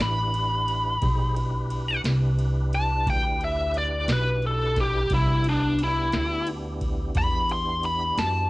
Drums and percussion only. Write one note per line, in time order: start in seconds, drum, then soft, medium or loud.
0.00 snare loud
0.34 ride medium
0.68 ride medium
1.02 kick loud
1.02 ride medium
1.36 ride medium
1.70 ride medium
2.04 snare loud
2.04 ride medium
2.39 ride medium
2.73 ride medium
3.07 kick loud
3.07 ride medium
3.41 ride medium
3.74 ride soft
4.08 snare loud
4.08 ride medium
4.42 ride medium
4.76 kick medium
4.76 snare soft
4.76 ride medium
5.10 kick loud
5.10 ride medium
5.44 ride medium
5.79 ride medium
6.12 snare loud
6.12 ride medium
6.47 ride medium
6.81 kick medium
6.81 ride medium
7.15 kick loud
7.15 ride medium
7.49 ride medium
7.83 ride soft
8.18 snare medium
8.18 ride medium